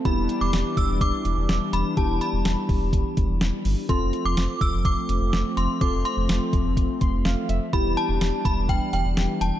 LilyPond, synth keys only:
\new Staff \with { instrumentName = "Synth keys" } { \time 4/4 \key e \phrygian \tempo 4 = 125 << { r1 | r1 | r1 | r2 r8 c'''8 f''8 e''8 |
r1 | } \\ { <b e' g'>1 | <b e' g'>1 | <c' f' a'>1 | <c' f' a'>1 |
<b e' g'>1 | } >> }